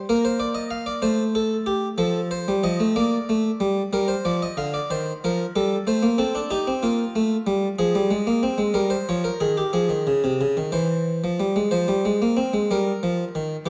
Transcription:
0.09 1.01 A#3 medium
0.09 0.24 A#4 medium
0.25 0.39 C5 medium
0.40 0.55 D5 medium
0.55 0.70 D#5 medium
0.71 0.86 F5 loud
0.86 1.02 D5 medium
1.02 1.95 A3 medium
1.02 1.22 C5 medium
1.35 1.55 A4 medium
1.66 1.86 G4 medium
1.98 2.45 F3 medium
1.98 2.18 A4 medium
2.31 2.51 C5 medium
2.48 2.63 G3 medium
2.63 2.79 F3 medium
2.63 2.84 D#5 loud
2.80 2.95 A3 medium
2.96 3.16 A#3 medium
2.96 3.90 D5 medium
3.29 3.49 A3 medium
3.60 3.81 G3 medium
3.93 4.13 G3 medium
3.93 4.09 A#4 medium
4.08 4.24 C5 medium
4.25 4.45 F3 medium
4.25 4.41 D5 medium
4.42 4.58 D#5 medium
4.57 4.78 D3 medium
4.57 4.74 F5 medium
4.74 4.90 D5 medium
4.90 5.11 D#3 soft
4.90 5.11 C5 medium
5.24 5.44 F3 medium
5.24 5.44 A#4 medium
5.56 5.76 G3 medium
5.56 5.75 A4 medium
5.87 6.03 A3 medium
5.87 6.07 C5 medium
6.03 6.19 A#3 medium
6.18 6.34 C4 medium
6.18 6.39 A4 medium
6.35 6.51 D4 medium
6.50 6.67 D#4 medium
6.50 6.71 G4 medium
6.67 6.83 C4 medium
6.83 7.03 A#3 medium
6.83 7.75 F4 medium
7.15 7.35 A3 medium
7.47 7.66 G3 medium
7.79 7.94 F3 medium
7.79 8.72 G#4 medium
7.95 8.10 G3 medium
8.11 8.26 G#3 medium
8.27 8.42 A#3 medium
8.43 8.58 C4 medium
8.58 8.74 G#3 medium
8.74 8.94 G3 medium
8.74 8.90 A#4 medium
8.90 9.06 C5 medium
9.09 9.29 F3 medium
9.09 9.24 C#5 medium
9.24 9.40 A#4 medium
9.40 9.61 D#3 medium
9.40 9.56 G#4 medium
9.57 9.73 G4 medium
9.73 9.90 F3 medium
9.73 10.70 G#4 medium
9.89 10.06 D#3 soft
10.07 10.23 C#3 medium
10.24 10.40 C3 medium
10.41 10.56 C#3 medium
10.57 10.73 D#3 medium
10.72 11.21 E3 medium
10.72 11.69 C5 medium
11.24 11.40 F3 medium
11.40 11.56 G3 medium
11.56 11.72 G#3 medium
11.71 11.88 F3 medium
11.71 12.66 C5 medium
11.88 12.04 G3 medium
12.05 12.21 G#3 medium
12.22 12.37 A#3 medium
12.37 12.53 C4 medium
12.53 12.69 G#3 medium
12.71 12.90 G3 medium
12.71 13.64 A#4 medium
13.03 13.23 F3 medium
13.35 13.55 D#3 medium
13.66 13.69 E3 medium

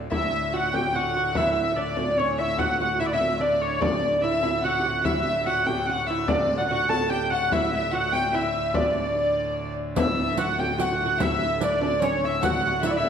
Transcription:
0.10 5.02 D2 medium
0.10 5.02 A2 medium
0.10 0.53 E4 medium
0.10 0.20 E5 medium
0.10 0.56 E5 medium
0.10 frame drum medium
0.31 0.54 E5 medium
0.31 frame drum soft
0.53 0.74 F#4 medium
0.53 0.74 F#5 medium
0.53 0.75 F#5 medium
0.53 frame drum soft
0.73 0.95 G4 medium
0.73 0.96 G5 medium
0.73 0.95 G5 medium
0.73 frame drum medium
0.94 1.14 F#4 medium
0.94 1.34 F#5 medium
0.94 1.36 F#5 medium
1.15 1.36 F#4 medium
1.15 frame drum soft
1.35 1.77 E4 medium
1.35 1.54 E5 medium
1.35 1.77 E5 medium
1.35 frame drum medium
1.55 1.78 E5 medium
1.55 frame drum soft
1.76 1.97 D4 medium
1.76 1.97 D5 medium
1.76 2.20 D5 medium
1.76 frame drum soft
1.97 2.17 D4 medium
1.97 2.18 D5 medium
1.97 frame drum medium
2.18 2.40 C#4 medium
2.18 2.38 C#5 medium
2.18 2.39 C#5 medium
2.38 2.59 E4 medium
2.38 2.60 E5 medium
2.38 2.59 E5 medium
2.38 frame drum soft
2.58 2.80 F#4 medium
2.58 2.78 F#5 medium
2.58 2.80 F#5 medium
2.58 frame drum medium
2.78 3.00 F#4 medium
2.78 2.98 F#5 medium
2.78 2.99 F#5 medium
2.78 frame drum soft
2.99 3.13 E4 medium
2.99 3.06 E5 medium
2.99 frame drum soft
3.06 3.13 D5 medium
3.13 3.40 E4 medium
3.13 3.41 E5 medium
3.13 3.39 E5 medium
3.21 frame drum medium
3.40 3.80 D4 medium
3.40 3.78 D5 medium
3.40 3.61 D5 medium
3.61 3.82 C#5 medium
3.61 frame drum soft
3.80 4.23 D4 medium
3.80 4.22 D5 medium
3.80 4.21 D5 medium
3.80 frame drum medium
4.22 4.42 E4 medium
4.22 4.63 E5 loud
4.22 4.60 E5 medium
4.43 4.64 E4 medium
4.43 frame drum medium
4.61 5.01 F#5 medium
4.61 5.05 F#5 medium
4.65 4.80 F#4 medium
4.79 4.85 G4 medium
4.86 5.05 F#4 medium
5.04 9.97 D2 medium
5.04 9.96 A2 medium
5.04 5.46 E4 medium
5.04 5.23 E5 medium
5.04 5.46 E5 medium
5.04 frame drum medium
5.24 5.44 E5 medium
5.24 frame drum soft
5.45 5.68 F#4 medium
5.45 5.65 F#5 medium
5.45 5.67 F#5 loud
5.45 frame drum soft
5.66 5.89 G4 medium
5.66 5.87 G5 medium
5.66 frame drum medium
5.86 6.10 F#4 medium
5.86 6.08 F#5 medium
5.86 6.07 F#5 loud
6.06 6.28 E4 medium
6.06 6.29 E5 medium
6.06 6.28 E5 medium
6.06 frame drum soft
6.28 6.60 D4 medium
6.28 6.61 D5 medium
6.28 6.59 D5 medium
6.28 frame drum loud
6.57 6.70 F#4 medium
6.57 6.68 F#5 medium
6.57 6.69 F#5 medium
6.68 6.91 F#4 medium
6.68 6.89 F#5 loud
6.68 6.89 F#5 medium
6.68 frame drum soft
6.89 7.10 A4 medium
6.89 7.10 A5 medium
6.89 7.09 A5 loud
6.89 frame drum medium
7.10 7.32 G4 medium
7.10 7.30 G5 loud
7.10 7.30 G5 medium
7.30 7.52 F#4 medium
7.30 7.52 F#5 loud
7.30 7.54 F#5 medium
7.30 frame drum soft
7.52 7.72 E4 medium
7.52 7.74 E5 medium
7.52 7.72 E5 medium
7.52 frame drum medium
7.72 7.93 E4 medium
7.72 7.93 E5 medium
7.72 7.95 E5 medium
7.72 frame drum soft
7.91 8.34 F#4 medium
7.91 8.12 F#5 medium
7.91 8.13 F#5 loud
7.91 frame drum soft
8.12 8.32 G5 loud
8.12 8.35 G5 medium
8.12 frame drum medium
8.33 8.75 E4 medium
8.33 8.76 E5 medium
8.33 8.74 E5 loud
8.54 frame drum soft
8.74 9.73 D4 medium
8.74 9.77 D5 medium
8.74 9.73 D5 medium
8.74 frame drum medium
8.95 frame drum soft
9.56 frame drum soft
9.96 13.09 D2 medium
9.96 13.09 A2 medium
9.96 10.38 E4 medium
9.96 10.16 E5 medium
9.96 10.38 E5 medium
9.96 riq medium
9.96 frame drum loud
10.16 10.39 E5 medium
10.16 frame drum soft
10.37 10.59 F#4 medium
10.37 10.79 F#5 medium
10.37 10.59 F#5 medium
10.37 riq medium
10.37 frame drum soft
10.58 10.80 G4 medium
10.58 10.80 G5 medium
10.58 frame drum medium
10.78 10.92 F#4 medium
10.78 10.98 F#5 medium
10.78 11.21 F#5 medium
10.78 riq medium
10.93 11.04 F#4 medium
10.99 11.20 F#5 medium
10.99 frame drum soft
11.06 11.19 F#4 medium
11.18 11.58 E4 medium
11.18 11.60 E5 medium
11.18 11.63 E5 medium
11.18 riq medium
11.18 frame drum medium
11.41 frame drum soft
11.61 11.82 D4 medium
11.61 11.80 D5 medium
11.61 12.03 D5 medium
11.61 riq medium
11.80 12.03 D4 medium
11.80 12.01 D5 medium
11.80 frame drum medium
11.99 12.23 C#4 medium
11.99 12.40 C#5 medium
11.99 12.25 C#5 loud
11.99 riq medium
12.23 12.43 E4 medium
12.23 12.43 E5 loud
12.23 frame drum soft
12.41 12.64 F#4 medium
12.41 12.80 F#5 medium
12.41 12.86 F#5 medium
12.41 riq medium
12.41 frame drum medium
12.64 12.82 F#4 medium
12.64 frame drum soft
12.81 12.86 F#4 medium
12.81 12.95 E5 medium
12.81 riq medium
12.81 frame drum soft
12.86 12.99 E4 medium
12.86 12.91 E5 loud
12.90 12.97 D5 medium
12.96 13.09 E4 medium
12.96 13.09 E5 medium
13.05 frame drum medium

